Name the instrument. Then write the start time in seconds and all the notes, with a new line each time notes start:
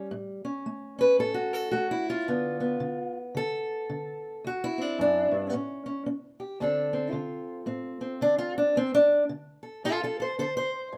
steel-string acoustic guitar
Already playing: G3
0.11 A2
0.45 C#4
0.66 A3
0.99 C#4 B4
1.19 A2 A4
1.34 F#4
1.53 A4
1.71 A3 F#4
1.91 E4
2.10 F4
2.28 G2 D3 B3
2.60 B3
2.80 D3
3.35 D3 A4
3.90 D3
4.44 D2 F#4
4.64 E4
4.78 C4 D4
4.99 F#2 D4
5.31 G2
5.53 A2 C#4
5.86 C#4
6.06 C#4
6.40 G4
6.60 D2 D3 C4 D4 A4
6.93 C4
7.11 D3 F4
7.66 A2 C4
8.01 C4
8.21 D3 D4
8.38 F4
8.58 D4
8.76 D2 C4
8.95 D4
9.29 D3
9.63 A4
9.84 A2 F4 A4
10.03 F4 A4
10.20 A4 C5
10.39 D3 A4 C5
10.57 C5
10.92 G2